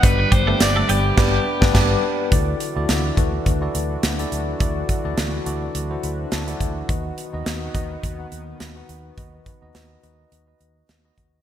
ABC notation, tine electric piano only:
X:1
M:4/4
L:1/16
Q:"Swing 16ths" 1/4=105
K:Dmix
V:1 name="Tine electric piano"
[B,DGBd]2 z [B,DGBe]3 z2 [B,DGBd]2 z [B,DGBd] [B,DGBd]2 z2 | [EFAd]2 z [EFAd]2 z [EFAB]2 z [EFAd]2 z2 [EFAd]2 z | [EFAd]2 z [EFAd]2 z [EFAd]2 z [EFAc]2 z2 [EFAd]2 z | [^DFB^d]2 z [DFBd]2 z [DFBd]2 z [DFBf]2 z2 [DFBf]2 z |
[^DFB^d]2 z [DFBd]2 z [DFBd]2 z [DFBd]2 z2 [DFBd]2 z |]
V:2 name="Tine electric piano" clef=bass
G,,6 z8 z2 | D,6 z8 z2 | D,6 z4 b2 a2 e2 | ^D,6 z8 z2 |
^D,6 z8 z2 |]